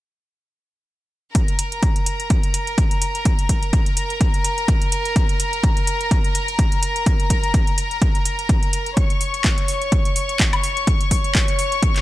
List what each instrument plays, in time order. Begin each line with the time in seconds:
1.35 string section A#4 A#5, kick, closed hi-hat
1.48 closed hi-hat
1.59 closed hi-hat
1.72 closed hi-hat
1.83 kick, closed hi-hat
1.96 closed hi-hat
2.06 closed hi-hat
2.20 closed hi-hat
2.30 kick, closed hi-hat
2.43 closed hi-hat
2.54 closed hi-hat
2.67 closed hi-hat
2.78 kick, closed hi-hat
2.91 closed hi-hat
3.02 closed hi-hat
3.15 closed hi-hat
3.25 kick, closed hi-hat
3.39 closed hi-hat
3.49 kick, closed hi-hat
3.63 closed hi-hat
3.73 kick, closed hi-hat
3.86 closed hi-hat
3.97 closed hi-hat
4.10 closed hi-hat
4.21 kick, closed hi-hat
4.34 closed hi-hat
4.45 closed hi-hat
4.58 closed hi-hat
4.68 kick, closed hi-hat
4.82 closed hi-hat
4.92 closed hi-hat
5.05 closed hi-hat
5.16 kick, closed hi-hat
5.29 closed hi-hat
5.40 closed hi-hat
5.53 closed hi-hat
5.63 kick, closed hi-hat
5.77 closed hi-hat
5.87 closed hi-hat
6.01 closed hi-hat
6.11 kick, closed hi-hat
6.24 closed hi-hat
6.35 closed hi-hat
6.48 closed hi-hat
6.59 kick, closed hi-hat
6.72 closed hi-hat
6.83 closed hi-hat
6.96 closed hi-hat
7.06 kick, closed hi-hat
7.20 closed hi-hat
7.30 kick, closed hi-hat
7.43 closed hi-hat
7.54 kick, closed hi-hat
7.67 closed hi-hat
7.78 closed hi-hat
7.91 closed hi-hat
8.02 kick, closed hi-hat
8.15 closed hi-hat
8.25 closed hi-hat
8.39 closed hi-hat
8.49 kick, closed hi-hat
8.63 closed hi-hat
8.73 closed hi-hat
8.86 closed hi-hat
8.97 string section C#5 C#6, kick, closed hi-hat
9.10 closed hi-hat
9.21 open hi-hat
9.34 closed hi-hat
9.44 kick, clap, closed hi-hat
9.58 closed hi-hat
9.68 open hi-hat
9.82 closed hi-hat
9.92 kick, closed hi-hat
10.05 closed hi-hat
10.16 open hi-hat
10.29 closed hi-hat
10.40 kick, clap, closed hi-hat
10.53 closed hi-hat, high woodblock
10.63 open hi-hat
10.77 closed hi-hat
10.87 kick, closed hi-hat
11.01 closed hi-hat
11.11 kick, open hi-hat
11.24 closed hi-hat
11.35 kick, clap, closed hi-hat
11.48 closed hi-hat
11.59 open hi-hat
11.72 closed hi-hat
11.83 kick, closed hi-hat
11.96 clap, closed hi-hat